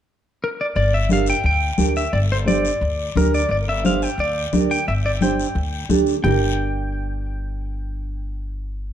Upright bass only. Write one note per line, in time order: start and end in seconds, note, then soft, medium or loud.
0.76 1.31 G1 medium
1.44 1.71 D2 medium
1.78 2.06 D2 medium
2.13 2.68 G1 medium
2.81 3.09 D2 medium
3.16 3.43 D2 medium
3.49 4.04 G1 medium
4.18 4.46 D2 medium
4.53 4.80 D2 medium
4.88 5.43 G1 medium
5.55 5.83 D2 medium
5.89 6.17 D2 medium
6.24 8.93 G1 medium